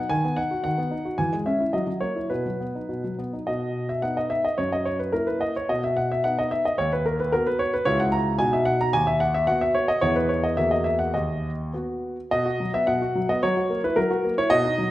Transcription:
0.00 0.10 D#4 soft
0.00 0.10 F#5 medium
0.09 0.23 D#3 medium
0.09 0.37 G#5 medium
0.24 0.38 B3 soft
0.36 0.51 D#4 soft
0.36 0.62 F#5 medium
0.51 0.65 F#4 soft
0.64 0.78 D#3 soft
0.64 1.18 F#5 medium
0.78 0.92 B3 soft
0.91 1.06 D#4 soft
1.05 1.19 F#4 soft
1.18 1.32 E3 soft
1.18 1.35 G#5 medium
1.33 1.47 G#3 soft
1.46 1.61 C#4 soft
1.46 1.74 E5 medium
1.60 1.74 E4 soft
1.73 1.86 F#3 soft
1.73 1.90 D#5 medium
1.87 2.02 F#3 soft
2.01 2.17 A#3 soft
2.01 2.30 C#5 medium
2.16 2.31 E4 soft
2.30 2.45 B2 soft
2.30 3.13 B4 medium
2.46 2.61 F#3 soft
2.60 2.75 B3 soft
2.75 2.90 D#4 soft
2.89 3.03 B2 soft
3.04 3.19 F#3 soft
3.19 3.33 B3 soft
3.33 3.47 D#4 soft
3.47 4.01 B2 soft
3.47 3.89 D#5 medium
3.89 4.03 E5 medium
4.02 4.43 B3 soft
4.02 4.43 D#4 soft
4.02 4.16 F#5 medium
4.17 4.31 D#5 medium
4.30 4.44 E5 medium
4.45 4.58 D#5 medium
4.58 5.11 F#2 soft
4.58 4.72 C#5 medium
4.72 4.86 D#5 medium
4.85 4.99 C#5 medium
4.99 5.13 B4 medium
5.12 5.53 A#3 soft
5.12 5.53 E4 soft
5.12 5.27 A#4 medium
5.27 5.41 B4 medium
5.41 5.55 D#5 medium
5.56 5.69 C#5 medium
5.69 6.22 B2 soft
5.69 5.83 D#5 medium
5.84 5.97 E5 medium
5.97 6.10 F#5 medium
6.12 6.24 E5 medium
6.24 6.63 B3 soft
6.24 6.63 D#4 soft
6.24 6.37 F#5 medium
6.39 6.51 D#5 medium
6.51 6.64 E5 medium
6.65 6.78 D#5 medium
6.78 7.31 D#2 medium
6.78 6.91 C#5 medium
6.93 7.05 B4 medium
7.06 7.18 A#4 medium
7.20 7.33 B4 medium
7.32 7.72 B3 soft
7.32 7.72 F#4 soft
7.32 7.46 A#4 medium
7.47 7.60 B4 medium
7.59 7.73 C#5 medium
7.74 7.87 B4 medium
7.85 8.38 C#2 medium
7.85 8.37 E4 soft
7.85 8.37 F#4 soft
7.85 7.99 C#5 medium
8.00 8.13 F#5 medium
8.12 8.39 A#5 medium
8.39 8.92 B2 medium
8.39 8.91 D#4 soft
8.39 8.91 F#4 soft
8.39 8.53 G#5 medium
8.53 8.67 E5 medium
8.65 8.80 F#5 medium
8.81 8.94 A#5 medium
8.93 9.46 D#2 medium
8.93 9.07 G#5 medium
9.07 9.21 E5 medium
9.20 9.34 F#5 medium
9.34 9.48 E5 medium
9.47 9.87 B3 soft
9.47 9.87 F#4 soft
9.47 9.61 F#5 medium
9.61 9.75 E5 medium
9.75 9.88 C#5 medium
9.88 10.02 D#5 medium
10.01 10.56 E2 medium
10.01 10.55 B3 soft
10.01 10.55 E4 soft
10.01 10.15 C#5 medium
10.16 10.30 B4 medium
10.29 10.43 C#5 medium
10.44 10.57 D#5 medium
10.57 11.13 E2 medium
10.57 11.12 A#3 soft
10.57 11.12 F#4 soft
10.57 10.71 E5 medium
10.71 10.85 D#5 medium
10.84 10.99 E5 medium
10.99 11.14 F#5 medium
11.14 11.72 D#2 soft
11.14 11.50 D#5 medium
11.73 12.15 B3 soft
11.73 12.16 F#4 soft
12.31 12.45 B2 medium
12.31 12.69 D#5 medium
12.46 12.60 F#4 soft
12.60 12.74 F#3 soft
12.74 12.88 B3 soft
12.74 12.88 E5 medium
12.87 13.01 B2 medium
12.87 13.28 F#5 medium
13.02 13.16 F#4 soft
13.15 13.30 F#3 soft
13.29 13.43 B3 soft
13.29 13.43 D#5 medium
13.43 13.56 F#3 medium
13.43 13.80 C#5 medium
13.57 13.71 F#4 soft
13.70 13.84 A#3 soft
13.84 13.98 E4 soft
13.84 13.98 B4 medium
13.96 14.10 F#3 medium
13.96 14.33 A#4 medium
14.11 14.25 F#4 medium
14.25 14.39 A#3 medium
14.38 14.51 E4 soft
14.38 14.51 C#5 medium
14.50 14.64 B2 medium
14.50 14.91 D#5 loud
14.65 14.79 D#4 medium
14.78 14.91 F#3 soft

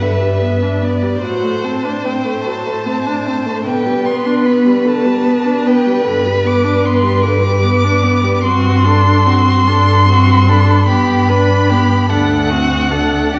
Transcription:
0.00 1.20 G2 soft
0.00 0.23 D3 soft
0.00 1.20 B4 soft
0.00 0.85 E5 soft
0.21 0.43 G3 soft
0.42 0.64 B3 soft
0.62 0.84 D4 soft
0.82 1.04 B3 soft
0.82 1.26 D5 soft
1.03 1.22 G3 soft
1.22 3.68 A2 soft
1.22 1.45 F#3 soft
1.22 3.68 C5 soft
1.22 1.66 F#5 soft
1.44 1.65 A3 soft
1.64 1.86 C4 soft
1.64 2.07 A5 soft
1.85 2.07 D4 soft
2.05 2.26 C4 soft
2.05 2.46 G5 soft
2.25 2.47 A3 soft
2.46 2.67 F#3 soft
2.46 3.63 A5 medium
2.66 2.87 A3 soft
2.86 3.08 C4 soft
3.06 3.28 D4 soft
3.26 3.47 C4 soft
3.46 3.64 A3 soft
3.65 6.08 B2 soft
3.65 3.87 D3 soft
3.65 8.45 B4 soft
3.65 4.06 G5 medium
3.85 4.07 G3 soft
4.05 4.27 B3 soft
4.05 4.46 C6 soft
4.25 4.46 D4 soft
4.45 4.67 B3 soft
4.45 4.89 B5 soft
4.65 4.87 G3 soft
4.85 5.07 D3 soft
4.85 5.68 A5 medium
5.05 5.27 G3 soft
5.26 5.47 B3 soft
5.45 5.68 D4 soft
5.66 5.88 B3 soft
5.66 6.06 G5 medium
5.86 6.04 G3 soft
6.05 8.44 G2 soft
6.05 6.27 D3 soft
6.05 6.47 B5 medium
6.25 6.47 G3 soft
6.45 6.66 B3 soft
6.45 6.87 D6 medium
6.64 6.86 D4 soft
6.84 7.05 B3 soft
6.84 7.24 C6 medium
7.03 7.25 G3 soft
7.23 7.44 D3 soft
7.23 8.43 D6 medium
7.42 7.65 G3 soft
7.63 7.85 B3 soft
7.84 8.05 D4 soft
8.03 8.25 B3 soft
8.24 8.43 G3 soft
8.43 9.52 G2 medium
8.43 8.86 C4 soft
8.43 8.87 F#4 soft
8.43 10.83 C6 medium
8.85 9.27 D4 soft
8.85 9.28 A4 soft
9.26 9.69 C4 soft
9.26 9.69 F#4 soft
9.66 10.73 G2 medium
9.66 10.07 D4 soft
9.66 10.08 A4 soft
10.08 10.50 C4 soft
10.08 10.50 F#4 soft
10.48 10.88 D4 soft
10.48 10.88 A4 soft
10.86 11.96 G2 medium
10.86 11.31 B3 soft
10.86 11.30 G4 soft
10.86 12.11 B5 medium
11.29 11.72 D4 medium
11.29 11.71 B4 soft
11.69 12.11 B3 soft
11.69 12.09 G4 soft
12.09 13.20 D2 medium
12.09 12.53 D4 soft
12.09 12.51 A4 soft
12.09 13.35 F#5 medium
12.49 12.93 C4 soft
12.49 12.93 F#4 soft
12.91 13.34 D4 soft
12.91 13.34 A4 soft
13.34 13.39 E2 medium
13.34 13.39 D4 soft
13.34 13.39 G4 medium
13.34 13.39 D5 medium

